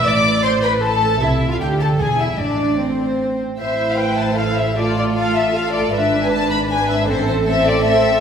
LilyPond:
<<
  \new Staff \with { instrumentName = "Violin section" } { \time 3/4 \key a \minor \tempo 4 = 155 d'''4 c'''8 b''8 a''4 | e''8. f''16 g''8 a''8 gis''8 e''8 | d''4 c''4. r8 | e''8. f''16 g''8 a''8 f''8 e''8 |
d''8 d''8 f''8 e''8 f''8 d''8 | e''8. gis''16 a''8 b''8 gis''8 e''8 | c''8 c''8 e''8 d''8 e''4 | }
  \new Staff \with { instrumentName = "Viola section" } { \time 3/4 \key a \minor d''4 c''8 b'8 a'4 | e'8. f'16 g'8 a'8 gis'8 e'8 | d'4 c'4. r8 | c''4 b'4 a'4 |
f'2 a'4 | b'2 b'4 | a'2. | }
  \new Staff \with { instrumentName = "Violin section" } { \time 3/4 \key a \minor d''4 c''8 b'8 a'4 | e'8. f'16 g'8 a'8 gis'8 e'8 | d'4 c'4. r8 | <e' c''>2. |
<f' a'>4 <f' a'>4 <f' a'>4 | <d' b'>2 <d' b'>4 | <c' a'>4 <c' a'>4 <c' a'>4 | }
  \new Staff \with { instrumentName = "Cello section" } { \clef bass \time 3/4 \key a \minor a,2. | c4 d4 e,4 | a,2~ a,8 r8 | a,2.~ |
a,2. | gis,2. | a,2. | }
  \new Staff \with { instrumentName = "Double bass section" } { \clef bass \time 3/4 \key a \minor a,,2. | c,4 d,4 e,,4 | a,,2~ a,,8 r8 | a,,2.~ |
a,,2. | gis,,2. | a,,2. | }
>>